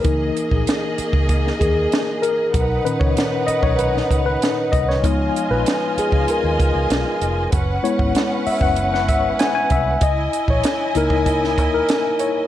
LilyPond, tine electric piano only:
<<
  \new Staff \with { instrumentName = "Tine electric piano" } { \time 4/4 \key cis \dorian \tempo 4 = 96 ais'4 r4. gis'4 ais'8~ | ais'8 b'16 cis''8. dis''16 cis''16 b'8. b'8. dis''16 cis''16~ | cis''8. b'8. gis'8 ais'4 r4 | r8 cis''4 e''16 fis''8 fis''16 e''8 gis''16 gis''16 e''8 |
dis''8. cis''8. ais'4~ ais'16 ais'8. cis''8 | }
  \new Staff \with { instrumentName = "Tine electric piano" } { \time 4/4 \key cis \dorian <e ais dis'>4. r2 r8 | r8 <ais, dis cis'>4. r2 | <eis gis b dis'>1 | r8 <gis b e'>4. r2 |
r4. <ais dis' e'>4. r4 | }
>>